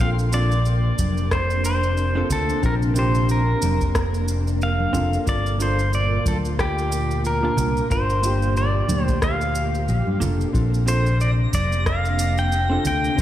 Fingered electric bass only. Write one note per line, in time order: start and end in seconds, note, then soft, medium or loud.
0.00 0.90 A#1 medium
0.99 2.22 F1 medium
2.30 2.53 D2 medium
2.63 3.54 A#1 medium
3.62 4.86 F1 medium
4.94 5.16 F1 medium
5.27 6.17 G1 medium
6.26 7.49 D2 medium
7.58 7.80 C2 medium
7.91 8.81 G1 medium
8.90 9.88 D2 medium
9.89 10.00 A#1 loud
10.07 10.16 G2 medium
10.21 10.44 F1 medium
10.54 11.45 A#1 medium
11.53 12.77 F1 medium
12.85 13.07 D2 medium
13.18 13.22 A#1 medium